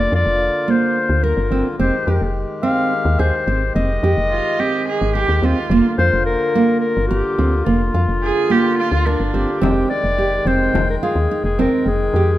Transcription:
Already playing: harmonium D3 A#3 F4, clarinet D5
0.12 fm bass F2, nylon-string guitar F4, clarinet D5
0.26 fm bass F1
0.68 nylon-string guitar A#3, clarinet C5
1.09 fm bass D2
1.24 nylon-string guitar A#4, clarinet A#4
1.37 fm bass G1
1.51 fm bass G1, nylon-string guitar C4
1.79 fm bass F1, harmonium D#3 G#3 G4, nylon-string guitar C4, clarinet C5
2.07 fm bass F2, nylon-string guitar G4
2.21 fm bass F1
2.62 nylon-string guitar C4, clarinet F5
3.05 fm bass D#2
3.19 fm bass D#2, nylon-string guitar G#4, clarinet C5
3.47 fm bass G#1, nylon-string guitar C4
3.75 fm bass F1, nylon-string guitar C4, clarinet D#5
4.03 fm bass F2, nylon-string guitar G4
4.17 fm bass F1
4.31 cello F4
4.59 nylon-string guitar C4, cello G4
4.89 cello G#4
5.01 fm bass G#1
5.15 cello G4, nylon-string guitar G#4
5.29 fm bass D#2
5.38 cello G4
5.42 fm bass D#2, nylon-string guitar C4, cello F4
5.70 fm bass F1, harmonium D3 A#3 F4, nylon-string guitar A#3
5.98 fm bass F2, nylon-string guitar F4, clarinet C5
6.13 fm bass F1
6.26 clarinet A#4
6.55 nylon-string guitar A#3
6.80 clarinet A#4
6.97 fm bass G1
7.07 fm bass G1, clarinet G4, nylon-string guitar A#4
7.39 fm bass D2, nylon-string guitar C4
7.64 fm bass F1, nylon-string guitar A#3, clarinet F4
7.94 fm bass F2, nylon-string guitar F4
8.08 fm bass F1
8.23 cello G#4
8.50 nylon-string guitar A#3, cello G4
8.79 cello F4
8.92 fm bass D2
9.06 cello D4, nylon-string guitar A#4
9.20 fm bass G1
9.33 fm bass G1, nylon-string guitar C4, clarinet G4
9.61 fm bass F1, harmonium D#3 G#3 G5, nylon-string guitar C4, frame drum
9.90 clarinet D5, frame drum
10.04 fm bass F1
10.18 nylon-string guitar G4
10.45 fm bass F1, nylon-string guitar C4, clarinet C5, frame drum
10.74 fm bass F1, frame drum
10.90 clarinet A#4
11.03 nylon-string guitar F4, clarinet G#4
11.16 fm bass D#2
11.31 nylon-string guitar D#4
11.44 fm bass F1, clarinet G#4
11.59 nylon-string guitar C4, clarinet A#4, frame drum
11.86 fm bass F1, clarinet G#4, frame drum
12.14 fm bass F2, nylon-string guitar G4

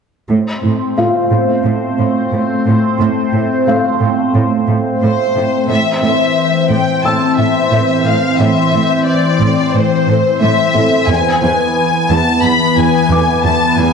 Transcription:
0.30 cello section A2, analog synth pad A3 C4 C5
0.63 cello section A2
0.97 cello section A2, felt piano F4 F5
1.31 cello section A2
1.65 cello section A2
1.98 cello section A2
2.32 cello section A2
2.66 cello section A2
3.00 cello section A2
3.33 cello section A2
3.67 cello section A2, felt piano F5
4.00 cello section A2
4.34 cello section A2
4.68 cello section A2
5.02 cello section A2, violin section C5
5.36 cello section A2
5.69 cello section A2, analog synth pad E3 C4 C5, violin section E5
6.03 cello section A2, violin section E5
6.71 cello section A2, violin section G5
7.04 cello section A2, violin section A5, felt piano E6
7.38 cello section A2, violin section E5
7.72 cello section A2
8.06 cello section A2, violin section F5
8.39 cello section A2, violin section E5
8.73 cello section A2
9.06 violin section D5
9.41 cello section A2
9.74 cello section A2, violin section C5
10.08 cello section A2
10.42 cello section A2, violin section E5
10.74 cello section A2, felt piano A4
11.09 cello section E2, analog synth pad E3 B3 B4, violin section G#5
11.42 cello section E2, violin section G#5
12.09 cello section E2, violin section A5
12.44 cello section E2, violin section B5
12.77 cello section E2, violin section G#5
13.11 cello section E2, felt piano D6
13.44 cello section E2, violin section A5
13.78 cello section E2, violin section G#5

